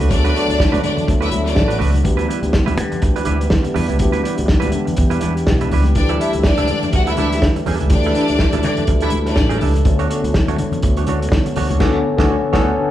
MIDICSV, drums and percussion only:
0, 0, Header, 1, 2, 480
1, 0, Start_track
1, 0, Tempo, 487805
1, 96, Time_signature, 4, 2, 24, 8
1, 12701, End_track
2, 0, Start_track
2, 0, Title_t, "Drums"
2, 8, Note_on_c, 9, 42, 44
2, 105, Note_off_c, 9, 42, 0
2, 105, Note_on_c, 9, 42, 80
2, 107, Note_on_c, 9, 36, 104
2, 203, Note_off_c, 9, 42, 0
2, 205, Note_off_c, 9, 36, 0
2, 243, Note_on_c, 9, 42, 43
2, 341, Note_off_c, 9, 42, 0
2, 357, Note_on_c, 9, 42, 57
2, 455, Note_off_c, 9, 42, 0
2, 491, Note_on_c, 9, 42, 49
2, 589, Note_off_c, 9, 42, 0
2, 589, Note_on_c, 9, 36, 110
2, 591, Note_on_c, 9, 38, 101
2, 688, Note_off_c, 9, 36, 0
2, 690, Note_off_c, 9, 38, 0
2, 713, Note_on_c, 9, 63, 78
2, 729, Note_on_c, 9, 42, 46
2, 811, Note_off_c, 9, 63, 0
2, 823, Note_off_c, 9, 42, 0
2, 823, Note_on_c, 9, 42, 55
2, 823, Note_on_c, 9, 62, 33
2, 823, Note_on_c, 9, 63, 73
2, 922, Note_off_c, 9, 42, 0
2, 922, Note_off_c, 9, 62, 0
2, 922, Note_off_c, 9, 63, 0
2, 961, Note_on_c, 9, 64, 82
2, 966, Note_on_c, 9, 42, 38
2, 1060, Note_off_c, 9, 64, 0
2, 1064, Note_off_c, 9, 42, 0
2, 1065, Note_on_c, 9, 42, 81
2, 1066, Note_on_c, 9, 36, 99
2, 1068, Note_on_c, 9, 62, 37
2, 1163, Note_off_c, 9, 42, 0
2, 1164, Note_off_c, 9, 36, 0
2, 1166, Note_off_c, 9, 62, 0
2, 1200, Note_on_c, 9, 42, 43
2, 1294, Note_off_c, 9, 42, 0
2, 1294, Note_on_c, 9, 42, 59
2, 1309, Note_on_c, 9, 63, 62
2, 1392, Note_off_c, 9, 42, 0
2, 1408, Note_off_c, 9, 63, 0
2, 1439, Note_on_c, 9, 38, 33
2, 1449, Note_on_c, 9, 42, 46
2, 1537, Note_off_c, 9, 38, 0
2, 1537, Note_on_c, 9, 38, 108
2, 1542, Note_on_c, 9, 36, 95
2, 1547, Note_off_c, 9, 42, 0
2, 1635, Note_off_c, 9, 38, 0
2, 1640, Note_off_c, 9, 36, 0
2, 1677, Note_on_c, 9, 42, 47
2, 1685, Note_on_c, 9, 63, 54
2, 1775, Note_off_c, 9, 42, 0
2, 1784, Note_off_c, 9, 63, 0
2, 1784, Note_on_c, 9, 46, 67
2, 1788, Note_on_c, 9, 62, 30
2, 1788, Note_on_c, 9, 64, 69
2, 1882, Note_off_c, 9, 46, 0
2, 1887, Note_off_c, 9, 62, 0
2, 1887, Note_off_c, 9, 64, 0
2, 1916, Note_on_c, 9, 63, 76
2, 1921, Note_on_c, 9, 42, 43
2, 2015, Note_off_c, 9, 42, 0
2, 2015, Note_off_c, 9, 63, 0
2, 2015, Note_on_c, 9, 42, 72
2, 2017, Note_on_c, 9, 36, 101
2, 2027, Note_on_c, 9, 62, 27
2, 2113, Note_off_c, 9, 42, 0
2, 2116, Note_off_c, 9, 36, 0
2, 2126, Note_off_c, 9, 62, 0
2, 2152, Note_on_c, 9, 42, 43
2, 2251, Note_off_c, 9, 42, 0
2, 2265, Note_on_c, 9, 62, 34
2, 2268, Note_on_c, 9, 42, 63
2, 2363, Note_off_c, 9, 62, 0
2, 2367, Note_off_c, 9, 42, 0
2, 2390, Note_on_c, 9, 42, 46
2, 2489, Note_off_c, 9, 42, 0
2, 2491, Note_on_c, 9, 38, 114
2, 2500, Note_on_c, 9, 36, 93
2, 2589, Note_off_c, 9, 38, 0
2, 2598, Note_off_c, 9, 36, 0
2, 2632, Note_on_c, 9, 42, 49
2, 2633, Note_on_c, 9, 63, 81
2, 2731, Note_off_c, 9, 42, 0
2, 2732, Note_off_c, 9, 63, 0
2, 2734, Note_on_c, 9, 42, 60
2, 2749, Note_on_c, 9, 63, 66
2, 2833, Note_off_c, 9, 42, 0
2, 2847, Note_off_c, 9, 63, 0
2, 2872, Note_on_c, 9, 42, 37
2, 2879, Note_on_c, 9, 64, 81
2, 2970, Note_off_c, 9, 42, 0
2, 2971, Note_on_c, 9, 42, 77
2, 2977, Note_off_c, 9, 64, 0
2, 2978, Note_on_c, 9, 36, 102
2, 2989, Note_on_c, 9, 62, 38
2, 3069, Note_off_c, 9, 42, 0
2, 3077, Note_off_c, 9, 36, 0
2, 3087, Note_off_c, 9, 62, 0
2, 3110, Note_on_c, 9, 42, 49
2, 3198, Note_off_c, 9, 42, 0
2, 3198, Note_on_c, 9, 42, 62
2, 3237, Note_on_c, 9, 63, 68
2, 3297, Note_off_c, 9, 42, 0
2, 3335, Note_off_c, 9, 63, 0
2, 3356, Note_on_c, 9, 42, 46
2, 3446, Note_on_c, 9, 38, 115
2, 3454, Note_off_c, 9, 42, 0
2, 3458, Note_on_c, 9, 36, 97
2, 3468, Note_on_c, 9, 62, 37
2, 3544, Note_off_c, 9, 38, 0
2, 3556, Note_off_c, 9, 36, 0
2, 3567, Note_off_c, 9, 62, 0
2, 3586, Note_on_c, 9, 42, 45
2, 3607, Note_on_c, 9, 63, 57
2, 3684, Note_off_c, 9, 42, 0
2, 3697, Note_on_c, 9, 46, 67
2, 3704, Note_on_c, 9, 62, 33
2, 3704, Note_on_c, 9, 64, 75
2, 3705, Note_off_c, 9, 63, 0
2, 3795, Note_off_c, 9, 46, 0
2, 3803, Note_off_c, 9, 62, 0
2, 3803, Note_off_c, 9, 64, 0
2, 3833, Note_on_c, 9, 42, 38
2, 3842, Note_on_c, 9, 63, 72
2, 3927, Note_off_c, 9, 42, 0
2, 3927, Note_on_c, 9, 42, 78
2, 3937, Note_on_c, 9, 36, 104
2, 3940, Note_off_c, 9, 63, 0
2, 3947, Note_on_c, 9, 62, 29
2, 4025, Note_off_c, 9, 42, 0
2, 4036, Note_off_c, 9, 36, 0
2, 4046, Note_off_c, 9, 62, 0
2, 4065, Note_on_c, 9, 42, 47
2, 4163, Note_off_c, 9, 42, 0
2, 4183, Note_on_c, 9, 62, 30
2, 4185, Note_on_c, 9, 42, 64
2, 4281, Note_off_c, 9, 62, 0
2, 4283, Note_off_c, 9, 42, 0
2, 4307, Note_on_c, 9, 42, 52
2, 4406, Note_off_c, 9, 42, 0
2, 4410, Note_on_c, 9, 38, 116
2, 4420, Note_on_c, 9, 36, 112
2, 4509, Note_off_c, 9, 38, 0
2, 4518, Note_off_c, 9, 36, 0
2, 4543, Note_on_c, 9, 42, 48
2, 4553, Note_on_c, 9, 63, 82
2, 4641, Note_off_c, 9, 42, 0
2, 4642, Note_on_c, 9, 42, 57
2, 4651, Note_off_c, 9, 63, 0
2, 4668, Note_on_c, 9, 63, 66
2, 4741, Note_off_c, 9, 42, 0
2, 4766, Note_off_c, 9, 63, 0
2, 4794, Note_on_c, 9, 42, 38
2, 4804, Note_on_c, 9, 64, 80
2, 4886, Note_off_c, 9, 42, 0
2, 4886, Note_on_c, 9, 42, 77
2, 4901, Note_on_c, 9, 36, 96
2, 4903, Note_off_c, 9, 64, 0
2, 4984, Note_off_c, 9, 42, 0
2, 4999, Note_off_c, 9, 36, 0
2, 5028, Note_on_c, 9, 42, 48
2, 5125, Note_off_c, 9, 42, 0
2, 5125, Note_on_c, 9, 42, 64
2, 5146, Note_on_c, 9, 62, 31
2, 5146, Note_on_c, 9, 63, 61
2, 5223, Note_off_c, 9, 42, 0
2, 5245, Note_off_c, 9, 62, 0
2, 5245, Note_off_c, 9, 63, 0
2, 5284, Note_on_c, 9, 42, 50
2, 5380, Note_on_c, 9, 38, 107
2, 5382, Note_off_c, 9, 42, 0
2, 5383, Note_on_c, 9, 36, 100
2, 5384, Note_on_c, 9, 62, 32
2, 5478, Note_off_c, 9, 38, 0
2, 5482, Note_off_c, 9, 36, 0
2, 5482, Note_off_c, 9, 62, 0
2, 5518, Note_on_c, 9, 42, 44
2, 5520, Note_on_c, 9, 63, 55
2, 5617, Note_off_c, 9, 42, 0
2, 5619, Note_off_c, 9, 63, 0
2, 5621, Note_on_c, 9, 64, 68
2, 5622, Note_on_c, 9, 46, 60
2, 5719, Note_off_c, 9, 64, 0
2, 5721, Note_off_c, 9, 46, 0
2, 5752, Note_on_c, 9, 63, 75
2, 5763, Note_on_c, 9, 42, 40
2, 5851, Note_off_c, 9, 63, 0
2, 5856, Note_off_c, 9, 42, 0
2, 5856, Note_on_c, 9, 42, 76
2, 5862, Note_on_c, 9, 36, 106
2, 5954, Note_off_c, 9, 42, 0
2, 5961, Note_off_c, 9, 36, 0
2, 5990, Note_on_c, 9, 42, 39
2, 6089, Note_off_c, 9, 42, 0
2, 6104, Note_on_c, 9, 62, 34
2, 6109, Note_on_c, 9, 42, 68
2, 6203, Note_off_c, 9, 62, 0
2, 6208, Note_off_c, 9, 42, 0
2, 6230, Note_on_c, 9, 42, 44
2, 6328, Note_off_c, 9, 42, 0
2, 6332, Note_on_c, 9, 38, 112
2, 6341, Note_on_c, 9, 36, 106
2, 6430, Note_off_c, 9, 38, 0
2, 6440, Note_off_c, 9, 36, 0
2, 6469, Note_on_c, 9, 42, 48
2, 6478, Note_on_c, 9, 63, 75
2, 6567, Note_off_c, 9, 42, 0
2, 6569, Note_on_c, 9, 42, 57
2, 6576, Note_off_c, 9, 63, 0
2, 6587, Note_on_c, 9, 62, 31
2, 6587, Note_on_c, 9, 63, 68
2, 6667, Note_off_c, 9, 42, 0
2, 6685, Note_off_c, 9, 62, 0
2, 6685, Note_off_c, 9, 63, 0
2, 6719, Note_on_c, 9, 42, 37
2, 6720, Note_on_c, 9, 64, 78
2, 6816, Note_off_c, 9, 42, 0
2, 6816, Note_on_c, 9, 42, 78
2, 6818, Note_off_c, 9, 64, 0
2, 6823, Note_on_c, 9, 36, 96
2, 6914, Note_off_c, 9, 42, 0
2, 6921, Note_off_c, 9, 36, 0
2, 6955, Note_on_c, 9, 42, 46
2, 7051, Note_off_c, 9, 42, 0
2, 7051, Note_on_c, 9, 42, 56
2, 7064, Note_on_c, 9, 62, 28
2, 7064, Note_on_c, 9, 63, 63
2, 7150, Note_off_c, 9, 42, 0
2, 7163, Note_off_c, 9, 62, 0
2, 7163, Note_off_c, 9, 63, 0
2, 7197, Note_on_c, 9, 38, 34
2, 7207, Note_on_c, 9, 42, 51
2, 7296, Note_off_c, 9, 38, 0
2, 7300, Note_on_c, 9, 38, 109
2, 7303, Note_on_c, 9, 36, 109
2, 7303, Note_on_c, 9, 62, 37
2, 7306, Note_off_c, 9, 42, 0
2, 7399, Note_off_c, 9, 38, 0
2, 7401, Note_off_c, 9, 36, 0
2, 7401, Note_off_c, 9, 62, 0
2, 7439, Note_on_c, 9, 42, 42
2, 7439, Note_on_c, 9, 63, 55
2, 7538, Note_off_c, 9, 42, 0
2, 7538, Note_off_c, 9, 63, 0
2, 7539, Note_on_c, 9, 46, 61
2, 7544, Note_on_c, 9, 62, 33
2, 7544, Note_on_c, 9, 64, 68
2, 7637, Note_off_c, 9, 46, 0
2, 7643, Note_off_c, 9, 62, 0
2, 7643, Note_off_c, 9, 64, 0
2, 7678, Note_on_c, 9, 42, 41
2, 7685, Note_on_c, 9, 63, 71
2, 7771, Note_off_c, 9, 42, 0
2, 7771, Note_on_c, 9, 42, 85
2, 7778, Note_on_c, 9, 36, 110
2, 7783, Note_off_c, 9, 63, 0
2, 7788, Note_on_c, 9, 62, 29
2, 7870, Note_off_c, 9, 42, 0
2, 7876, Note_off_c, 9, 36, 0
2, 7886, Note_off_c, 9, 62, 0
2, 7904, Note_on_c, 9, 42, 41
2, 8002, Note_off_c, 9, 42, 0
2, 8018, Note_on_c, 9, 42, 60
2, 8025, Note_on_c, 9, 62, 30
2, 8116, Note_off_c, 9, 42, 0
2, 8124, Note_off_c, 9, 62, 0
2, 8147, Note_on_c, 9, 42, 42
2, 8246, Note_off_c, 9, 42, 0
2, 8253, Note_on_c, 9, 38, 96
2, 8260, Note_on_c, 9, 36, 110
2, 8352, Note_off_c, 9, 38, 0
2, 8359, Note_off_c, 9, 36, 0
2, 8389, Note_on_c, 9, 42, 52
2, 8395, Note_on_c, 9, 63, 77
2, 8487, Note_off_c, 9, 42, 0
2, 8491, Note_on_c, 9, 42, 59
2, 8494, Note_off_c, 9, 63, 0
2, 8510, Note_on_c, 9, 62, 35
2, 8510, Note_on_c, 9, 63, 66
2, 8589, Note_off_c, 9, 42, 0
2, 8608, Note_off_c, 9, 62, 0
2, 8608, Note_off_c, 9, 63, 0
2, 8627, Note_on_c, 9, 42, 40
2, 8644, Note_on_c, 9, 64, 79
2, 8726, Note_off_c, 9, 42, 0
2, 8730, Note_on_c, 9, 42, 70
2, 8738, Note_on_c, 9, 36, 105
2, 8742, Note_off_c, 9, 64, 0
2, 8828, Note_off_c, 9, 42, 0
2, 8836, Note_off_c, 9, 36, 0
2, 8861, Note_on_c, 9, 42, 48
2, 8957, Note_off_c, 9, 42, 0
2, 8957, Note_on_c, 9, 42, 61
2, 8979, Note_on_c, 9, 62, 32
2, 8979, Note_on_c, 9, 63, 63
2, 9055, Note_off_c, 9, 42, 0
2, 9077, Note_off_c, 9, 62, 0
2, 9077, Note_off_c, 9, 63, 0
2, 9107, Note_on_c, 9, 38, 34
2, 9117, Note_on_c, 9, 42, 45
2, 9205, Note_off_c, 9, 38, 0
2, 9208, Note_on_c, 9, 38, 115
2, 9215, Note_off_c, 9, 42, 0
2, 9216, Note_on_c, 9, 36, 96
2, 9307, Note_off_c, 9, 38, 0
2, 9315, Note_off_c, 9, 36, 0
2, 9350, Note_on_c, 9, 42, 43
2, 9352, Note_on_c, 9, 63, 57
2, 9448, Note_off_c, 9, 42, 0
2, 9450, Note_off_c, 9, 63, 0
2, 9455, Note_on_c, 9, 46, 60
2, 9461, Note_on_c, 9, 64, 72
2, 9553, Note_off_c, 9, 46, 0
2, 9560, Note_off_c, 9, 64, 0
2, 9594, Note_on_c, 9, 63, 79
2, 9601, Note_on_c, 9, 42, 44
2, 9692, Note_off_c, 9, 63, 0
2, 9693, Note_off_c, 9, 42, 0
2, 9693, Note_on_c, 9, 42, 86
2, 9697, Note_on_c, 9, 36, 111
2, 9791, Note_off_c, 9, 42, 0
2, 9795, Note_off_c, 9, 36, 0
2, 9831, Note_on_c, 9, 42, 39
2, 9930, Note_off_c, 9, 42, 0
2, 9936, Note_on_c, 9, 62, 32
2, 9944, Note_on_c, 9, 42, 66
2, 10035, Note_off_c, 9, 62, 0
2, 10043, Note_off_c, 9, 42, 0
2, 10080, Note_on_c, 9, 42, 48
2, 10176, Note_on_c, 9, 38, 104
2, 10178, Note_off_c, 9, 42, 0
2, 10181, Note_on_c, 9, 36, 104
2, 10181, Note_on_c, 9, 62, 34
2, 10275, Note_off_c, 9, 38, 0
2, 10279, Note_off_c, 9, 36, 0
2, 10280, Note_off_c, 9, 62, 0
2, 10307, Note_on_c, 9, 63, 79
2, 10316, Note_on_c, 9, 42, 47
2, 10405, Note_off_c, 9, 63, 0
2, 10415, Note_off_c, 9, 42, 0
2, 10415, Note_on_c, 9, 42, 54
2, 10421, Note_on_c, 9, 62, 33
2, 10421, Note_on_c, 9, 63, 63
2, 10514, Note_off_c, 9, 42, 0
2, 10519, Note_off_c, 9, 62, 0
2, 10519, Note_off_c, 9, 63, 0
2, 10546, Note_on_c, 9, 64, 84
2, 10556, Note_on_c, 9, 42, 38
2, 10645, Note_off_c, 9, 64, 0
2, 10652, Note_off_c, 9, 42, 0
2, 10652, Note_on_c, 9, 42, 77
2, 10657, Note_on_c, 9, 62, 34
2, 10660, Note_on_c, 9, 36, 100
2, 10750, Note_off_c, 9, 42, 0
2, 10756, Note_off_c, 9, 62, 0
2, 10758, Note_off_c, 9, 36, 0
2, 10791, Note_on_c, 9, 42, 50
2, 10889, Note_off_c, 9, 42, 0
2, 10889, Note_on_c, 9, 42, 61
2, 10902, Note_on_c, 9, 62, 30
2, 10902, Note_on_c, 9, 63, 62
2, 10988, Note_off_c, 9, 42, 0
2, 11000, Note_off_c, 9, 62, 0
2, 11000, Note_off_c, 9, 63, 0
2, 11045, Note_on_c, 9, 42, 47
2, 11137, Note_on_c, 9, 38, 109
2, 11139, Note_on_c, 9, 36, 103
2, 11143, Note_off_c, 9, 42, 0
2, 11235, Note_off_c, 9, 38, 0
2, 11238, Note_off_c, 9, 36, 0
2, 11275, Note_on_c, 9, 42, 42
2, 11279, Note_on_c, 9, 63, 56
2, 11372, Note_on_c, 9, 46, 65
2, 11373, Note_off_c, 9, 42, 0
2, 11378, Note_off_c, 9, 63, 0
2, 11384, Note_on_c, 9, 62, 31
2, 11384, Note_on_c, 9, 64, 74
2, 11471, Note_off_c, 9, 46, 0
2, 11482, Note_off_c, 9, 62, 0
2, 11482, Note_off_c, 9, 64, 0
2, 11518, Note_on_c, 9, 42, 43
2, 11518, Note_on_c, 9, 63, 80
2, 11611, Note_on_c, 9, 49, 74
2, 11613, Note_on_c, 9, 38, 93
2, 11615, Note_on_c, 9, 36, 99
2, 11616, Note_off_c, 9, 42, 0
2, 11616, Note_off_c, 9, 63, 0
2, 11709, Note_off_c, 9, 49, 0
2, 11711, Note_off_c, 9, 38, 0
2, 11713, Note_off_c, 9, 36, 0
2, 11990, Note_on_c, 9, 36, 99
2, 11991, Note_on_c, 9, 38, 95
2, 12088, Note_off_c, 9, 36, 0
2, 12090, Note_off_c, 9, 38, 0
2, 12334, Note_on_c, 9, 36, 102
2, 12335, Note_on_c, 9, 38, 102
2, 12432, Note_off_c, 9, 36, 0
2, 12434, Note_off_c, 9, 38, 0
2, 12701, End_track
0, 0, End_of_file